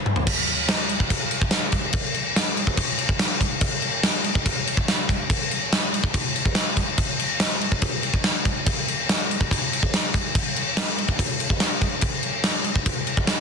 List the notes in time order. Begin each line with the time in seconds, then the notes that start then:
0.06 mid tom
0.16 floor tom
0.27 kick, crash
0.47 crash
0.69 snare, crash
0.89 crash
1.00 kick
1.10 kick, crash
1.31 crash
1.42 kick
1.51 snare, crash
1.72 kick, crash
1.93 kick, crash
2.14 crash
2.36 snare, crash
2.57 crash
2.67 kick
2.77 kick, crash
2.98 crash
3.09 kick
3.19 snare, crash
3.41 kick, crash
3.61 kick, crash
3.82 crash
4.03 snare, crash
4.24 crash
4.35 kick
4.46 kick, crash
4.67 crash
4.77 kick
4.88 snare, crash
5.09 kick, crash
5.30 kick, crash
5.51 crash
5.73 snare, crash
5.94 crash
6.04 kick
6.14 kick, crash
6.36 crash
6.45 kick
6.55 snare, crash
6.77 kick, crash
6.98 kick, crash
7.19 crash
7.40 snare, crash
7.61 crash
7.72 kick
7.82 kick, crash
8.03 crash
8.14 kick
8.24 snare, crash
8.45 kick, crash
8.66 kick, crash
8.88 crash
9.09 snare, crash
9.31 crash
9.41 kick
9.51 kick, crash
9.73 crash
9.83 kick
9.94 snare, crash
10.14 kick, crash
10.35 kick, crash
10.56 crash
10.77 snare, crash
10.98 crash
11.09 kick
11.19 kick, crash
11.40 crash
11.50 kick
11.60 snare, crash
11.81 kick, crash
12.01 kick, crash
12.23 crash
12.44 snare, crash
12.64 crash
12.76 kick
12.86 kick, crash
13.07 crash
13.17 kick
13.27 snare, crash